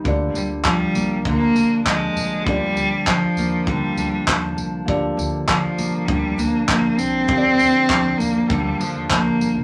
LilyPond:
<<
  \new Staff \with { instrumentName = "Felt piano" } { \time 4/4 \key g \phrygian \tempo 4 = 99 <bes f' g' d''>1 | <bes f' g' d''>1 | <bes f' g' d''>1 | <bes f' g' c'' d''>1 | }
  \new Staff \with { instrumentName = "Cello" } { \clef bass \time 4/4 \key g \phrygian r8 g8 g4 bes4 aes4 | g4 f4 g4. r8 | r4 f4 g8 bes8 bes8 c'8~ | c'4. bes8 g8 f8 bes4 | }
  \new Staff \with { instrumentName = "Steel-string acoustic guitar" } { \clef bass \time 4/4 \key g \phrygian d4 f8 bes8 d8 d'8 f4 | d4 f8 bes8 d8 d'8 f4 | d4 f8 bes8 d8 d'8 f4 | d4 f8 bes8 d8 d'8 f4 | }
  \new Staff \with { instrumentName = "Upright bass" } { \clef bass \time 4/4 \key g \phrygian d,8 d,4 c,8 d,8 d,4 c,8 | d,8 d,4 ees,4 d,8 ees,8 c,8 | d,8 d,4 c,8 d,8 d,4 c,8 | d,8 d,4 ees,8 d,8 r16 ees,16 d,16 r16 c,16 bes,,16 | }
  \new DrumStaff \with { instrumentName = "Drums" } \drummode { \time 4/4 bd8 tamb8 <hc bd>8 tamb8 bd8 tamb8 <hc bd>8 tamb8 | bd8 tamb8 <hc bd>8 tamb8 bd8 tamb8 <hc bd>8 tamb8 | bd8 tamb8 <hc bd>8 tamb8 bd8 tamb8 <hc bd>8 tamb8 | bd8 tamb8 <hc bd>8 tamb8 bd8 tamb8 <hc bd>8 tamb8 | }
>>